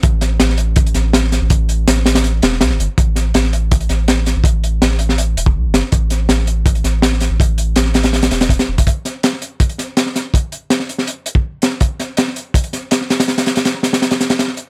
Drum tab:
HH |x-x-x-x-xxx-x-x-|x-x-x-xxx-x-x-x-|x-x-x-x-xxx-x-x-|x-x-x-x-x-x---x-|
SD |--o-oo----o-ooo-|----ooooo-oooo--|--o-oo----o-ooo-|----oo-o------o-|
BD |o-------o-------|o---------------|o-------o-------|o----------o----|

HH |x-x-x-x-xxx-x-x-|x-x-x-xxxxxxxx-x|x-x-x-x-xxx-x-x-|x-x-x-x-x-x---x-|
SD |--o-oo----o-ooo-|----oooooooo-o--|--o-oo----o-ooo-|----oo-o------o-|
BD |o-------o-------|o-----------o--o|o-------o-------|o----------o----|

HH |x-x-x-x-xxx-x-xx|xxxxx-xxxxxxx-x-|
SD |--o-oo----o-oooo|oooooooooooooo--|
BD |o-------o-------|----------------|